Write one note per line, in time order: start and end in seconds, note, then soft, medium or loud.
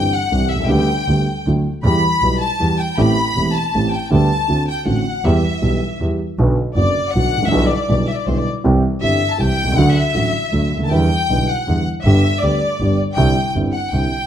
0.00 0.10 G1 medium
0.00 0.10 G2 soft
0.00 0.10 E3 soft
0.00 0.11 G3 soft
0.00 0.11 C4 soft
0.00 0.11 G4 soft
0.13 0.51 F#5 medium
0.32 0.48 C2 soft
0.32 0.48 C2 medium
0.32 0.48 C3 soft
0.32 0.48 E3 soft
0.32 0.48 G3 soft
0.32 0.48 C4 soft
0.32 0.48 G4 soft
0.50 0.69 C2 soft
0.50 0.69 E5 medium
0.55 0.60 B1 soft
0.60 0.65 C2 medium
0.65 0.70 C#2 medium
0.65 0.85 G3 medium
0.65 1.44 G5 medium
0.69 0.85 D2 medium
0.69 0.86 D2 medium
0.69 0.85 D3 medium
0.69 0.85 B3 medium
0.69 0.85 G4 medium
1.07 1.23 D2 medium
1.07 1.24 D2 soft
1.07 1.24 D3 soft
1.07 1.24 G3 soft
1.07 1.24 B3 soft
1.07 1.25 G4 soft
1.46 1.62 D2 medium
1.46 1.63 D2 soft
1.46 1.63 D3 soft
1.46 1.63 F#3 soft
1.46 1.63 A3 soft
1.46 1.63 F#4 soft
1.84 2.00 E2 medium
1.84 2.01 E2 medium
1.84 2.01 E3 medium
1.84 2.01 G3 medium
1.84 2.01 B3 medium
1.84 2.01 G4 medium
1.84 2.38 B5 loud
2.23 2.38 B1 medium
2.23 2.39 B1 soft
2.23 2.39 B2 soft
2.23 2.38 E3 soft
2.23 2.39 G3 soft
2.23 2.39 B3 soft
2.23 2.39 G4 soft
2.42 2.80 A5 medium
2.59 2.76 E2 medium
2.59 2.77 E2 soft
2.59 2.77 E3 soft
2.59 2.76 G3 soft
2.59 2.76 B3 soft
2.59 2.77 G4 soft
2.78 2.98 G5 medium
2.97 3.14 A1 medium
2.97 3.15 A1 medium
2.97 3.14 A2 medium
2.97 3.14 E3 medium
2.97 3.14 A3 medium
2.97 3.14 C4 medium
2.97 3.15 G4 medium
2.97 3.55 B5 loud
3.36 3.52 E1 medium
3.36 3.53 E1 soft
3.36 3.52 E2 medium
3.36 3.52 E3 soft
3.36 3.52 A3 soft
3.36 3.52 C4 soft
3.36 3.53 G4 soft
3.54 3.92 A5 medium
3.74 3.90 A1 medium
3.74 3.91 A2 soft
3.74 3.91 E3 soft
3.74 3.91 A3 soft
3.74 3.90 C4 soft
3.74 3.90 G4 soft
3.93 4.12 G5 medium
4.10 4.27 D2 medium
4.10 4.28 D2 medium
4.10 4.27 D3 medium
4.10 4.27 G3 medium
4.10 4.27 B3 medium
4.10 4.27 G4 medium
4.10 4.65 A5 medium
4.48 4.65 D2 soft
4.48 4.66 D2 medium
4.48 4.65 D3 soft
4.48 4.65 A3 soft
4.48 4.65 C4 soft
4.48 4.65 F#4 soft
4.70 4.88 G5 medium
4.86 5.02 A1 soft
4.86 5.03 A1 medium
4.86 5.02 A2 soft
4.86 5.02 D3 soft
4.86 5.02 A3 soft
4.86 5.02 C4 soft
4.86 5.02 F#4 soft
4.86 5.22 F#5 medium
5.24 5.40 E2 medium
5.24 5.40 E3 medium
5.24 5.41 G3 medium
5.24 5.41 B3 medium
5.24 5.40 G4 medium
5.24 6.00 E5 medium
5.62 5.78 B1 medium
5.62 5.78 B1 soft
5.62 5.79 B2 soft
5.62 5.78 E3 soft
5.62 5.78 G3 soft
5.62 5.78 B3 soft
5.62 5.78 G4 soft
6.00 6.16 E2 medium
6.00 6.17 E2 soft
6.00 6.17 E3 soft
6.00 6.17 G3 soft
6.00 6.17 B3 soft
6.00 6.17 G4 soft
6.39 6.55 B1 medium
6.39 6.55 B2 medium
6.39 6.55 D3 medium
6.39 6.55 F#3 medium
6.39 6.55 B3 medium
6.39 6.55 F#4 medium
6.76 6.92 F#1 soft
6.76 6.92 F#1 medium
6.76 6.92 F#2 soft
6.76 6.92 D3 soft
6.76 6.92 F#3 soft
6.76 6.92 B3 soft
6.76 6.93 F#4 soft
6.76 7.12 D5 medium
7.10 7.50 F#5 medium
7.15 7.30 B1 medium
7.15 7.31 B1 soft
7.15 7.31 B2 soft
7.15 7.31 D3 soft
7.15 7.31 F#3 soft
7.15 7.31 B3 soft
7.15 7.31 F#4 soft
7.33 7.51 A1 soft
7.38 7.43 G#1 soft
7.43 7.48 A1 medium
7.47 7.52 A#1 medium
7.47 7.69 E5 medium
7.51 7.68 B1 medium
7.51 7.68 B2 medium
7.51 7.68 D3 medium
7.51 7.68 G3 medium
7.51 7.68 B3 medium
7.51 7.68 E4 medium
7.69 8.09 D5 medium
7.88 8.05 B1 soft
7.88 8.06 B1 medium
7.88 8.05 B2 medium
7.88 8.05 D3 soft
7.88 8.05 G3 soft
7.88 8.05 B3 soft
7.88 8.06 E4 soft
8.08 8.18 E5 medium
8.16 8.27 D5 medium
8.26 8.43 B1 soft
8.26 8.43 B1 medium
8.26 8.43 B2 soft
8.26 8.43 D3 soft
8.26 8.43 G3 soft
8.26 8.43 B3 soft
8.26 8.44 E4 soft
8.26 8.36 C5 medium
8.36 8.46 D5 medium
8.64 8.80 C2 medium
8.64 8.81 C2 medium
8.64 8.80 C3 medium
8.64 8.80 E3 medium
8.64 8.80 G3 medium
8.64 8.80 C4 medium
8.64 8.81 G4 medium
9.01 9.18 G1 medium
9.01 9.18 G2 medium
9.01 9.17 E3 soft
9.01 9.18 G3 soft
9.01 9.18 C4 soft
9.01 9.18 G4 soft
9.01 9.30 E5 medium
9.32 9.39 A5 medium
9.38 9.55 C2 soft
9.38 9.56 C2 medium
9.38 9.55 C3 medium
9.38 9.55 E3 soft
9.38 9.55 G3 soft
9.38 9.55 C4 soft
9.38 9.55 G4 soft
9.38 9.78 G5 loud
9.59 9.77 C2 medium
9.63 9.68 B1 soft
9.63 9.72 C2 medium
9.72 9.77 C#2 medium
9.77 9.93 D2 medium
9.77 9.93 D3 medium
9.77 9.93 F#3 medium
9.77 9.93 A3 medium
9.77 9.93 F#4 medium
9.77 9.97 F#5 loud
9.96 10.72 E5 loud
10.14 10.31 A1 medium
10.14 10.31 A1 soft
10.14 10.31 A2 soft
10.14 10.31 D3 soft
10.14 10.31 F#3 soft
10.14 10.31 A3 soft
10.14 10.31 F#4 soft
10.52 10.69 D2 soft
10.52 10.69 D2 medium
10.52 10.69 D3 soft
10.52 10.69 F#3 soft
10.52 10.69 A3 soft
10.52 10.69 F#4 soft
10.72 10.91 D2 soft
10.77 10.82 C#2 soft
10.77 10.85 D2 medium
10.84 10.90 D#2 medium
10.84 10.91 A5 medium
10.90 11.07 E2 medium
10.90 11.08 E2 medium
10.90 11.07 D3 medium
10.90 11.07 E3 medium
10.90 11.07 G3 medium
10.90 11.07 B3 medium
10.90 11.07 E4 medium
10.90 11.48 G5 loud
11.30 11.46 B1 medium
11.30 11.46 B2 soft
11.30 11.46 D3 soft
11.30 11.46 G3 soft
11.30 11.46 B3 soft
11.30 11.45 E4 soft
11.48 11.86 F#5 medium
11.68 11.83 E2 medium
11.68 11.83 E2 soft
11.68 11.83 D3 soft
11.68 11.84 E3 soft
11.68 11.84 G3 soft
11.68 11.83 B3 soft
11.68 11.84 E4 soft
12.04 12.20 G1 medium
12.04 12.21 G1 medium
12.04 12.21 G2 medium
12.04 12.21 D3 medium
12.04 12.21 G3 medium
12.04 12.21 B3 medium
12.04 12.21 G4 medium
12.04 12.39 E5 medium
12.41 12.58 D2 medium
12.41 12.58 D3 soft
12.41 12.58 G3 soft
12.41 12.58 B3 soft
12.41 12.58 G4 soft
12.41 12.98 D5 medium
12.81 12.96 G1 medium
12.81 12.96 G2 medium
12.81 12.96 D3 soft
12.81 12.96 G3 soft
12.81 12.96 B3 soft
12.81 12.96 G4 soft
13.14 13.33 C2 medium
13.14 13.33 C3 medium
13.14 13.33 D3 medium
13.14 13.33 G3 medium
13.14 13.33 C4 medium
13.14 13.50 G5 medium
13.19 13.33 E4 medium
13.55 13.70 G1 medium
13.55 13.70 G1 soft
13.55 13.71 G2 medium
13.55 13.70 D3 soft
13.55 13.71 G3 soft
13.55 13.71 C4 soft
13.55 13.71 E4 medium
13.72 13.90 F#5 medium
13.92 14.08 C2 medium
13.92 14.08 C2 soft
13.92 14.08 C3 soft
13.92 14.08 D3 soft
13.92 14.08 G3 soft
13.92 14.08 C4 soft
13.92 14.08 E4 soft
13.92 14.27 G5 medium